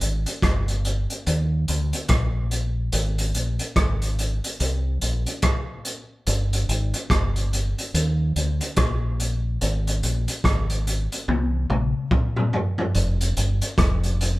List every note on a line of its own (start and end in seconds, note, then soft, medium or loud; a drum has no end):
0.01 0.25 G#1 medium
0.01 closed hi-hat medium
0.26 closed hi-hat soft
0.42 1.05 G1 medium
0.42 kick loud
0.42 cross-stick loud
0.42 closed hi-hat medium
0.68 closed hi-hat medium
0.84 closed hi-hat medium
1.10 closed hi-hat soft
1.26 1.66 D#2 medium
1.26 closed hi-hat medium
1.68 1.92 D2 medium
1.68 closed hi-hat medium
1.93 closed hi-hat soft
2.08 2.89 A#1 medium
2.08 kick loud
2.08 cross-stick loud
2.08 closed hi-hat medium
2.51 closed hi-hat medium
2.92 3.32 G#1 medium
2.92 closed hi-hat medium
3.18 closed hi-hat medium
3.34 3.58 A#1 medium
3.34 closed hi-hat medium
3.59 closed hi-hat soft
3.76 4.39 G#1 medium
3.76 kick loud
3.76 cross-stick loud
3.76 closed hi-hat medium
4.01 closed hi-hat medium
4.18 closed hi-hat medium
4.44 closed hi-hat soft
4.60 4.99 C2 medium
4.60 closed hi-hat medium
5.01 5.25 A#1 medium
5.01 closed hi-hat medium
5.26 closed hi-hat medium
5.42 kick loud
5.42 cross-stick loud
5.42 closed hi-hat medium
5.85 closed hi-hat medium
6.26 6.66 G1 loud
6.26 closed hi-hat medium
6.53 closed hi-hat medium
6.69 6.92 G#1 medium
6.69 closed hi-hat medium
6.93 closed hi-hat medium
7.10 7.73 G1 medium
7.10 kick loud
7.10 cross-stick loud
7.10 closed hi-hat medium
7.36 closed hi-hat medium
7.53 closed hi-hat medium
7.78 closed hi-hat soft
7.94 8.33 D#2 medium
7.94 closed hi-hat medium
8.36 8.59 D2 medium
8.36 closed hi-hat medium
8.60 closed hi-hat medium
8.76 9.57 A#1 medium
8.76 kick loud
8.76 cross-stick loud
8.76 closed hi-hat loud
9.19 closed hi-hat medium
9.61 10.01 G#1 medium
9.61 closed hi-hat medium
9.87 closed hi-hat soft
10.03 10.26 A#1 medium
10.03 closed hi-hat medium
10.28 closed hi-hat soft
10.44 11.07 G#1 medium
10.44 kick loud
10.44 cross-stick loud
10.44 closed hi-hat medium
10.69 closed hi-hat medium
10.87 closed hi-hat medium
11.12 closed hi-hat soft
11.28 11.67 C2 medium
11.28 high tom medium
11.70 11.93 A#1 medium
11.70 mid tom medium
12.11 kick loud
12.11 mid tom medium
12.36 mid tom medium
12.53 floor tom medium
12.78 floor tom medium
12.94 13.34 F1 loud
12.94 closed hi-hat medium
13.20 closed hi-hat medium
13.36 13.60 G1 medium
13.36 closed hi-hat medium
13.61 closed hi-hat medium
13.78 14.39 F1 medium
13.78 kick loud
13.78 cross-stick loud
13.78 closed hi-hat medium
14.03 closed hi-hat medium
14.20 closed hi-hat medium